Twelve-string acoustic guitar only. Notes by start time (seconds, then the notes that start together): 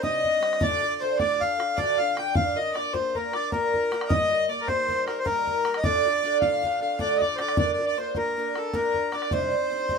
0.02 C3 G3 C4 D4 D#4
0.23 C4 D4 D#4
0.40 G3 C4 D4 D#4
0.60 D2 A2 D3 D4 F4 A4
0.82 D3 D4 F4 A4
1.00 D3 D4 F4 A4
1.19 D2 A2 D3 D4 F4 A4
1.40 D3 D4 F4 A4
1.58 D3 D4 F4 A4
1.77 D2 A2 D3 D4 F4 A4
1.98 D3 D4 F4 A4
2.17 D3 D4 F4 A4
2.35 A#3 D4 F4 A#4
2.56 D4 F4 A#4
2.74 A#3 D4 F4 A#4
2.93 A#3 D4 F4 A#4
3.15 A#3 D4 F4 A#4
3.33 D4 F4 A#4
3.52 A#3 D4 F4 A#4
3.73 D4 F4 A#4
3.91 A#3 D4 F4 A#4
4.09 D#3 G3 A#3 D#4 A#4
4.30 G3 D#4 A#4
4.48 G3 A#3 D#4 A#4
4.68 D#3 G3 A#3 D#4 A#4
4.88 G3 A#3 D#4 A#4
5.06 G3 D#4 A#4
5.25 D#3 G3 A#3 D#4 A#4
5.46 G3 D#4 A#4
5.65 G3 A#3 D#4 A#4
5.83 D2 A2 D3 D4 F4 A4
6.04 D3 D4 F4 A4
6.23 D3 D4 F4 A4
6.42 D2 A2 D3 D4 F4 A4
6.62 D3 D4 F4 A4
6.81 D3 D4 F4 A4
6.99 D2 A2 D3 D4 F4 A4
7.20 D3 D4 F4 A4
7.38 D3 D4 F4 A4
7.57 A#3 D4 F4 A#4
7.78 D4 F4 A#4
7.97 A#3 D4 F4 A#4
8.15 A#3 D4 F4 A#4
8.37 A#3 D4 F4 A#4
8.54 D4 F4 A#4
8.73 A#3 D4 F4 A#4
8.95 D4 F4 A#4
9.12 A#3 D4 F4 A#4
9.31 C3 G3 C4 D4 D#4
9.51 C4 D4 D#4
9.70 G3 C4 D4 D#4
9.89 C3 G3 C4 D4 D#4